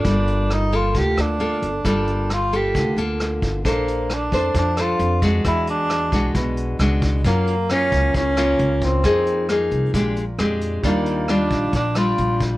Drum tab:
HH |xxxxxxxx|xxxxxxxx|xxxxxxxx|xxxxxxxx|
SD |--r--r--|r-r---r-|--r--r--|r-r---r-|
BD |o---o---|o---o--o|o--oo--o|o--oo--o|

HH |xxxxxxxx|xxxxxxxx|xxxxxxxx|
SD |--r--r--|r-r---r-|--r--r--|
BD |o--oo--o|o---o---|o--oo--o|